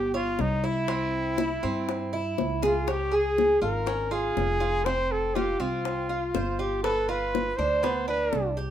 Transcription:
0.00 0.35 G1 medium
0.00 0.12 G4 medium
0.00 0.13 G4 medium
0.14 0.43 F4 loud
0.14 0.62 C#5 medium
0.14 high bongo soft
0.39 1.57 C2 loud
0.39 0.67 D#4 medium
0.39 high bongo soft
0.39 low bongo medium
0.64 0.88 E4 medium
0.64 2.39 E4 medium
0.64 high bongo soft
0.88 1.37 C4 medium
0.88 high bongo medium
1.38 1.63 E4 medium
1.38 high bongo medium
1.63 2.34 G2 medium
1.63 2.11 C4 medium
1.63 high bongo soft
1.89 high bongo medium
2.13 2.61 E4 medium
2.13 high bongo soft
2.38 3.56 C#2 medium
2.38 high bongo medium
2.62 2.91 F4 medium
2.62 2.87 G#4 medium
2.62 low bongo medium
2.87 3.16 G4 medium
2.87 3.11 C#5 medium
2.87 high bongo medium
3.12 3.60 G#4 medium
3.12 3.62 G#4 medium
3.38 high bongo medium
3.62 4.32 G#1 medium
3.62 3.86 F4 medium
3.62 4.14 A#4 medium
3.62 high bongo soft
3.86 4.11 C#4 medium
3.86 high bongo medium
4.11 4.59 F4 medium
4.11 4.87 G#4 loud
4.11 high bongo soft
4.37 5.54 F1 medium
4.37 high bongo soft
4.37 low bongo medium
4.60 4.85 F4 medium
4.60 high bongo soft
4.85 5.34 C4 medium
4.85 5.13 C5 loud
4.85 high bongo medium
5.12 5.36 A4 medium
5.35 5.59 F4 medium
5.35 5.62 G4 medium
5.35 high bongo medium
5.60 6.30 C2 medium
5.60 6.08 C4 medium
5.60 6.61 F4 medium
5.60 high bongo soft
5.85 high bongo medium
6.09 6.33 F4 medium
6.09 high bongo soft
6.35 7.52 G1 medium
6.35 6.58 C5 medium
6.35 high bongo soft
6.35 low bongo medium
6.59 6.83 F4 medium
6.59 6.83 G4 medium
6.59 high bongo soft
6.83 7.11 A4 loud
6.83 7.08 B4 medium
6.83 high bongo medium
7.09 7.57 F4 medium
7.09 7.58 B4 medium
7.35 high bongo medium
7.56 8.28 D2 loud
7.56 7.82 D4 medium
7.56 8.07 C5 medium
7.56 high bongo soft
7.83 8.07 B3 medium
7.83 high bongo medium
8.08 8.56 D4 medium
8.08 8.52 B4 medium
8.08 high bongo soft
8.33 8.70 C2 medium
8.33 high bongo soft
8.33 low bongo medium
8.57 8.70 G4 medium
8.57 high bongo soft

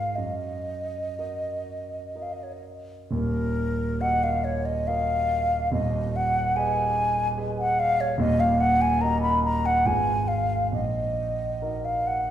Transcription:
0.00 0.14 G#2 soft
0.00 0.13 F4 soft
0.00 0.13 A#4 soft
0.00 0.14 D5 soft
0.00 0.17 F5 medium
0.15 1.15 F#2 soft
0.15 2.23 D#5 medium
1.18 2.11 F#4 soft
1.18 2.11 A#4 soft
1.18 2.12 D#5 soft
2.15 3.07 F#4 soft
2.15 3.08 A#4 soft
2.15 3.08 D#5 soft
2.22 2.35 F5 medium
2.33 2.45 D#5 soft
2.43 2.55 C#5 medium
2.53 2.64 D#5 medium
3.11 3.97 D#1 medium
3.11 3.98 D#2 medium
3.11 4.02 A#4 medium
4.01 4.84 F#4 soft
4.01 4.84 A#4 soft
4.01 4.84 D#5 soft
4.01 4.25 F#5 medium
4.23 4.46 F5 medium
4.44 4.67 C#5 medium
4.65 4.89 D#5 medium
4.87 5.69 F#4 soft
4.87 5.69 A#4 soft
4.87 5.69 D#5 soft
4.87 5.73 F5 medium
5.72 6.53 D#1 medium
5.72 6.53 D#2 medium
5.72 6.17 D#5 medium
6.16 6.58 F#5 medium
6.56 7.34 G#4 medium
6.56 7.34 B4 medium
6.56 7.34 D#5 medium
6.56 7.29 G#5 loud
7.38 8.15 G#4 medium
7.38 8.15 B4 soft
7.38 8.15 D#5 medium
7.59 7.81 F#5 loud
7.79 8.02 F5 loud
8.01 8.19 C#5 loud
8.18 8.98 D#1 medium
8.18 8.98 D#2 medium
8.18 8.41 D#5 loud
8.40 8.62 F5 loud
8.60 8.83 F#5 loud
8.81 9.03 G#5 loud
9.01 9.81 F#4 medium
9.01 9.82 A#4 medium
9.01 9.82 D#5 medium
9.01 9.22 A#5 loud
9.22 9.43 B5 loud
9.44 9.67 A#5 loud
9.66 9.88 F#5 loud
9.86 10.69 G#1 medium
9.86 10.68 F4 soft
9.86 10.68 G#4 soft
9.86 10.68 B4 soft
9.86 10.29 G#5 loud
10.28 10.71 F5 medium
10.72 11.59 A#1 medium
10.72 11.86 D#5 medium
11.62 12.31 D#4 soft
11.62 12.31 F#4 soft
11.62 12.31 A#4 soft
11.85 12.08 F5 medium
12.07 12.31 F#5 medium

